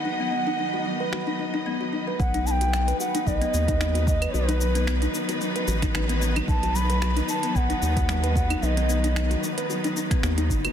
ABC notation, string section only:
X:1
M:4/4
L:1/8
Q:"Swing 16ths" 1/4=112
K:B
V:1 name="String section"
[D,F,B,Dd]8 | [D,F,B,DB]8- | [D,F,B,DB]8- | [D,F,B,DB]8- |
[D,F,B,DB]8 |]